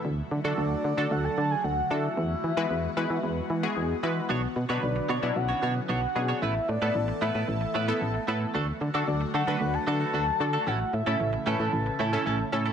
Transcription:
0.05 fm bass D2, analog synth pad D3 F#3 A3 F#4
0.31 fm bass D3
0.44 fm bass D3, analog polysynth D4 F#4 A4
0.58 fm bass D2, soft synth lead D5
0.84 fm bass D3
0.97 fm bass D3, analog polysynth D4 F#4 A4
1.11 fm bass D2, soft synth lead F#5
1.24 soft synth lead A5
1.38 fm bass D3, soft synth lead A5
1.51 soft synth lead G#5
1.64 fm bass D2, soft synth lead F#5
1.90 fm bass D3, analog polysynth D4 F#4 A4, soft synth lead E5
2.17 fm bass E2, analog synth pad E3 G#3 B3
2.44 fm bass E3
2.57 fm bass E3, analog polysynth G#3 B3 E4 F#4 B4
2.70 fm bass E2
2.97 fm bass E3, analog polysynth G#3 B3 E4 F#4 B4
3.10 fm bass E3
3.23 fm bass E2
3.50 fm bass E3
3.63 analog polysynth G#3 B3 E4 F#4 G#4
3.77 fm bass E2
4.03 fm bass E3, analog polysynth G#3 B3 E4 F#4 B4
4.29 fm bass B1, analog synth pad D3, clean electric guitar B3 D4 F#4 C#5
4.43 muted clean electric guitar stroke
4.56 fm bass B2, muted clean electric guitar stroke
4.69 fm bass B2, analog polysynth F#3 B3 D4 B4, clean electric guitar B3 D4 F#4 C#5
4.82 fm bass B1, soft synth lead D5, muted clean electric guitar stroke
4.96 muted clean electric guitar stroke
5.09 fm bass B2, clean electric guitar B3 D4 F#4 C#5
5.22 fm bass B2, analog polysynth F#3 B3 C#4 D4 E4, clean electric guitar B3 D4 F#4 C#5
5.35 fm bass B1, soft synth lead F#5, muted clean electric guitar stroke
5.49 clean electric guitar B3 D4 F#4 C#5
5.62 fm bass B2, clean electric guitar B3 D4 F#4 C#5, soft synth lead F#5
5.75 muted clean electric guitar stroke
5.88 fm bass B1, clean electric guitar B3 D4 F#4 C#5, soft synth lead F#5
6.02 muted clean electric guitar stroke
6.15 fm bass B2, analog polysynth F#3 B3 C#4 D4 G#4, muted clean electric guitar stroke
6.28 clean electric guitar B3 D4 F#4 C#5
6.42 fm bass A1, analog synth pad E3 A3 A4, clean electric guitar A3 B3 E4 B4, soft synth lead E5
6.55 muted clean electric guitar stroke
6.68 fm bass A2, soft synth lead D5, muted clean electric guitar stroke
6.82 fm bass A2, clean electric guitar A3 B3 E4 B4, analog polysynth B3 E4 A4
6.95 fm bass A1, muted clean electric guitar stroke
7.08 muted clean electric guitar stroke
7.21 fm bass A2, clean electric guitar A3 B3 E4 B4, analog polysynth B3 E4 A4, soft synth lead E5
7.34 fm bass A2, clean electric guitar A3 B3 E4 B4
7.48 fm bass A1, muted clean electric guitar stroke
7.61 muted clean electric guitar stroke
7.74 fm bass A2, clean electric guitar A3 B3 E4 B4
7.88 clean electric guitar A3 B3 E4 B4, analog polysynth B3 E4 A4
8.01 fm bass A1
8.14 muted clean electric guitar stroke
8.27 fm bass A2, clean electric guitar A3 B3 E4 B4, analog polysynth B3 E4 A4
8.41 muted clean electric guitar stroke
8.54 fm bass D2, analog synth pad D3 F#3 F#4, clean electric guitar A3 D4 F#4 A4
8.67 muted clean electric guitar stroke
8.81 fm bass D3, muted clean electric guitar stroke
8.94 fm bass D3, clean electric guitar A3 D4 F#4 A4, analog polysynth D4 F#4 A4
9.07 fm bass D2, soft synth lead D5, muted clean electric guitar stroke
9.21 muted clean electric guitar stroke
9.34 fm bass D3, clean electric guitar A3 D4 F#4 A4, soft synth lead F#5
9.47 fm bass D3, clean electric guitar A3 D4 F#4 A4, analog polysynth D4 F#4 B4
9.61 fm bass D2
9.74 soft synth lead A5, muted clean electric guitar stroke
9.87 fm bass D3, clean electric guitar A3 D4 F#4 A4, soft synth lead A5
10.00 clean electric guitar A3 D4 F#4 A4
10.13 fm bass D2, clean electric guitar A3 D4 F#4 A4
10.27 muted clean electric guitar stroke
10.40 fm bass D3, analog polysynth D4 F#4 A4, muted clean electric guitar stroke
10.53 clean electric guitar A3 D4 F#4 A4
10.66 fm bass A1, analog synth pad C#3 E3 E4, clean electric guitar A3 C#4 E4 A4, soft synth lead F#5
10.80 muted clean electric guitar stroke
10.93 fm bass A2, soft synth lead E5, muted clean electric guitar stroke
11.06 fm bass A2, clean electric guitar A3 C#4 E4 A4, analog polysynth C#4 E4 A4
11.20 fm bass A1, muted clean electric guitar stroke
11.33 muted clean electric guitar stroke
11.46 fm bass A2, clean electric guitar A3 C#4 E4 A4, analog polysynth C#4 E4 B4, soft synth lead A5
11.59 fm bass A2, clean electric guitar A3 C#4 E4 A4
11.73 fm bass A1, muted clean electric guitar stroke
11.86 muted clean electric guitar stroke
11.99 fm bass A2, clean electric guitar A3 C#4 E4 A4
12.13 clean electric guitar A3 C#4 E4 A4, analog polysynth C#4 E4 A4
12.26 fm bass A1, clean electric guitar A3 C#4 E4 A4
12.39 muted clean electric guitar stroke
12.52 fm bass A2, analog polysynth C#4 E4 A4, muted clean electric guitar stroke
12.66 clean electric guitar A3 C#4 E4 A4

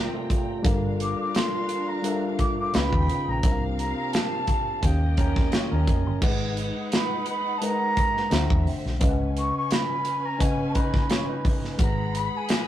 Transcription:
Already playing: french horn section A#2 C3 F3 G3 F4, reed electric piano C3 C4 A#4 D5 E5, clean electric guitar A#3 G4, string section C4 G5 A#5
0.13 clean electric guitar A3 F4
0.30 kick, closed hi-hat
0.62 fingered electric bass G1, french horn section D3 F3 F4, reed electric piano G3 D4 A4 A#4 F5, string section D4 A#4 F5, kick, closed hi-hat
1.00 flute D6, closed hi-hat
1.20 flute D6
1.35 flute C6, snare, closed hi-hat
1.69 closed hi-hat
1.88 flute A#5
2.02 reed electric piano G3 D4 A4 A#4 E5, closed hi-hat
2.12 reed electric piano F5
2.39 flute D6, kick, closed hi-hat
2.59 flute D6
2.73 fingered electric bass C#2, reed electric piano C#3 C#4 D#4 B4 F5, french horn section D#3 G#3 B3 C#4, string section D#4 B4 G5, flute B5, snare, closed hi-hat
2.93 fingered electric bass D#2, kick
3.09 closed hi-hat
3.28 fingered electric bass A#1, flute A#5
3.42 fingered electric bass C2, reed electric piano C3 C4 D4 A#4 E5, french horn section F3 G3 A#3 C4 G4, string section C4 A#4 F5, kick, closed hi-hat
3.52 reed electric piano F5
3.78 flute A#5, closed hi-hat
3.95 flute A#5
4.12 flute A5, snare, closed hi-hat
4.47 kick, closed hi-hat
4.81 fingered electric bass D#2, french horn section D#3 C#4 G4, reed electric piano D#3 A#3 C#4, string section A#3 G4 D#5, flute G5, kick, closed hi-hat
4.85 reed electric piano G4 F5
5.17 clean electric guitar C#4 A#4, kick, closed hi-hat
5.36 kick, snare
5.52 clean electric guitar F4 C#5, snare, closed hi-hat
5.71 fingered electric bass D#2, clean electric guitar C#4 A#4
5.87 fingered electric bass F1, kick, closed hi-hat
6.06 fingered electric bass G1
6.21 fingered electric bass G#1, reed electric piano G#3 D#4 G#4 B4 F#5, string section D#4 B4 F#5, kick, crash
6.57 closed hi-hat
6.92 flute B5, snare, closed hi-hat
7.26 flute B5, closed hi-hat
7.58 reed electric piano G#3, flute A5
7.62 reed electric piano D#4 A#4 B4 F#5, flute A#5, closed hi-hat
7.97 kick, closed hi-hat
8.17 snare
8.30 fingered electric bass D2, reed electric piano D3 D4 C5 E5 F5, string section A3 C4 E5, snare, closed hi-hat
8.39 reed electric piano F#5
8.50 fingered electric bass E2, kick
8.67 open hi-hat
8.86 fingered electric bass B1, snare
9.00 fingered electric bass C#2, reed electric piano C#3 C#4 B4 D#5 F5, string section C#4 B4 G#5, kick, closed hi-hat
9.09 reed electric piano F#5
9.37 flute C#6, closed hi-hat
9.57 flute C#6
9.71 flute B5, snare, closed hi-hat
10.05 closed hi-hat
10.25 flute A#5
10.38 reed electric piano C#3 C#4 B4 D#5 F#5, flute G#5, kick, closed hi-hat
10.75 clean electric guitar D#4 B4, flute B5, kick, closed hi-hat
10.94 kick, snare
11.10 clean electric guitar F4 C#5, snare, closed hi-hat
11.29 clean electric guitar D#4 B4
11.45 kick, open hi-hat
11.65 snare
11.78 fingered electric bass G#1, reed electric piano G#3 D#4 G#4 B4 F#5, string section G#4 F#5 B5, kick, closed hi-hat
11.83 flute A#5
12.15 flute B5, closed hi-hat
12.37 flute G#5
12.49 snare, closed hi-hat

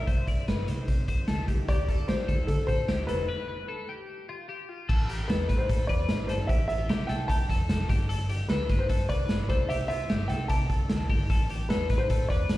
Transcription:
Already playing: upright piano E5
0.07 fingered electric bass C2, clean electric guitar C5, kick, closed hi-hat
0.27 clean electric guitar D5, kick, closed hi-hat
0.48 fingered electric bass G1, clean electric guitar B4, snare, closed hi-hat
0.68 fingered electric bass C2, clean electric guitar C5, closed hi-hat
0.88 fingered electric bass C3, kick, closed hi-hat
1.08 fingered electric bass C2, clean electric guitar C5, kick, closed hi-hat
1.28 fingered electric bass D2, clean electric guitar A4, snare, closed hi-hat
1.48 fingered electric bass C2, clean electric guitar G4, kick, closed hi-hat
1.69 fingered electric bass D2, clean electric guitar G4, upright piano D5, kick, closed hi-hat
1.88 clean electric guitar A4, kick, closed hi-hat
2.08 fingered electric bass A1, clean electric guitar G4, upright piano C5, snare, closed hi-hat
2.28 fingered electric bass D2, clean electric guitar A4, kick, closed hi-hat
2.47 fingered electric bass D3, upright piano A4, kick, closed hi-hat
2.67 fingered electric bass A2, clean electric guitar A4, upright piano C5, kick, closed hi-hat
2.88 fingered electric bass D2, clean electric guitar G4, snare, closed hi-hat
3.07 fingered electric bass F1, clean electric guitar A4, upright piano B4, closed hi-hat
3.28 clean electric guitar B4
3.48 clean electric guitar B4
3.69 clean electric guitar A4
3.89 clean electric guitar G4
4.29 clean electric guitar F4
4.49 clean electric guitar G4
4.69 clean electric guitar F4
4.89 fingered electric bass A1, clean electric guitar A4, kick, crash
5.09 clean electric guitar G4, closed hi-hat
5.28 fingered electric bass E2, clean electric guitar A4, upright piano B4, snare, closed hi-hat
5.49 fingered electric bass A2, clean electric guitar B4, kick, closed hi-hat
5.58 upright piano C5
5.69 fingered electric bass A2, clean electric guitar A4, kick, closed hi-hat
5.87 fingered electric bass E2, clean electric guitar B4, upright piano D5, kick, closed hi-hat
6.09 fingered electric bass A1, snare, closed hi-hat
6.27 fingered electric bass G1, clean electric guitar A4, upright piano C5, closed hi-hat
6.47 fingered electric bass A1, clean electric guitar G4, upright piano E5, kick, closed hi-hat
6.68 clean electric guitar F4, upright piano E5, closed hi-hat
6.89 fingered electric bass C2, clean electric guitar G4, snare, closed hi-hat
7.07 fingered electric bass C2, clean electric guitar A4, upright piano G5, closed hi-hat
7.28 clean electric guitar G4, upright piano A5, kick, closed hi-hat
7.50 fingered electric bass F2, clean electric guitar A4, kick, closed hi-hat
7.69 fingered electric bass F1, snare, closed hi-hat
7.89 fingered electric bass G1, clean electric guitar G4, kick, closed hi-hat
8.09 clean electric guitar A4, closed hi-hat
8.29 clean electric guitar G4, closed hi-hat
8.48 fingered electric bass D2, clean electric guitar A4, upright piano B4, snare, closed hi-hat
8.69 fingered electric bass G1, clean electric guitar B4, kick, closed hi-hat
8.79 upright piano C5
8.89 fingered electric bass G2, clean electric guitar A4, kick, closed hi-hat
9.09 fingered electric bass C2, clean electric guitar B4, upright piano D5, kick, closed hi-hat
9.29 fingered electric bass G1, snare, closed hi-hat
9.49 fingered electric bass C2, clean electric guitar A4, upright piano C5, kick, closed hi-hat
9.69 fingered electric bass C2, clean electric guitar G4, upright piano E5, closed hi-hat
9.88 clean electric guitar F4, upright piano E5, closed hi-hat
10.09 fingered electric bass G1, clean electric guitar G4, snare, closed hi-hat
10.28 fingered electric bass C2, clean electric guitar A4, upright piano G5, closed hi-hat
10.48 fingered electric bass C3, clean electric guitar G4, upright piano A5, kick, closed hi-hat
10.70 fingered electric bass C2, clean electric guitar A4, kick, closed hi-hat
10.89 fingered electric bass D2, snare, closed hi-hat
11.09 fingered electric bass G1, clean electric guitar G4, kick, open hi-hat
11.30 fingered electric bass A1, clean electric guitar A4, kick, closed hi-hat
11.49 clean electric guitar G4, closed hi-hat
11.69 fingered electric bass E2, clean electric guitar A4, upright piano B4, snare, closed hi-hat
11.89 fingered electric bass A2, clean electric guitar B4, kick, closed hi-hat
11.98 upright piano C5
12.10 fingered electric bass A2, clean electric guitar A4, kick, closed hi-hat
12.29 fingered electric bass E2, clean electric guitar B4, upright piano D5, kick, closed hi-hat
12.49 fingered electric bass A1, snare, closed hi-hat

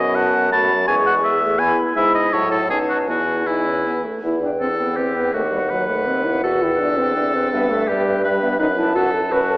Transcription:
Already playing: bassoon F#2, french horn B3, clarinet F#4, oboe D#5, flute G#5
0.15 oboe F#5, flute A5
0.51 french horn A3, clarinet F#4, oboe A5, flute B5
0.70 french horn F#3
0.87 bassoon E2, french horn G#3, clarinet G#4, oboe G#5, flute C#6
1.06 oboe F#5
1.24 french horn G#3, clarinet G#4, oboe E5
1.41 french horn A3
1.59 french horn B3, clarinet E4, oboe G#5, flute B5
1.96 bassoon G#2, french horn G#3, clarinet E4, oboe E5, flute B5
2.15 oboe D#5
2.33 bassoon A2, french horn F#3, clarinet E4, oboe C#5, flute A5
2.51 oboe A4
2.70 bassoon B2, french horn C#4, clarinet D#4, oboe G#4, flute A5
2.89 oboe F#4
3.08 bassoon E2, french horn B3, clarinet E4, oboe F#4, flute G#5
3.46 french horn D#4, clarinet E4, oboe E4, flute G#5
3.66 french horn C#4
3.85 french horn B3
4.04 french horn A3
4.23 bassoon E2, french horn E4
4.42 french horn D4, clarinet B4, flute G5
4.60 bassoon E2, french horn C4, oboe A4
4.78 french horn B3, clarinet B4, flute G5
4.97 bassoon E2, french horn C4, oboe G4
5.15 french horn B3, clarinet B4, flute G5
5.33 bassoon D#2, french horn A3, oboe F#4, clarinet B4, flute F#5
5.51 french horn G3, clarinet B4, flute F#5
5.70 bassoon D#2, french horn F#3, oboe B4
5.88 french horn A3, clarinet B4, flute F#5
6.07 bassoon D#2, french horn C4
6.25 french horn E4, clarinet B4, flute F#5
6.44 bassoon E2, french horn F#4, oboe A4
6.62 french horn E4, clarinet B4, flute G5
6.79 bassoon E2, french horn D4
6.98 french horn C4, clarinet B4, flute G5
7.16 bassoon E2, french horn D4
7.34 french horn C4, clarinet B4, flute G5
7.52 bassoon G2, french horn B3, clarinet B4, flute E5
7.70 french horn A3, clarinet B4, flute E5
7.88 bassoon G2, french horn G3, oboe G4
8.06 clarinet B4, flute E5
8.24 bassoon G2, oboe B4
8.41 french horn B3, clarinet B4, flute E5
8.59 bassoon F#2, french horn D#4, oboe B4
8.77 french horn E4, clarinet B4, flute A5
8.95 bassoon F#2, french horn F#4, oboe A4
9.13 french horn A4, clarinet B4, flute A5
9.32 bassoon F#2, oboe F#4, french horn B4
9.50 french horn A4, clarinet B4, flute A5

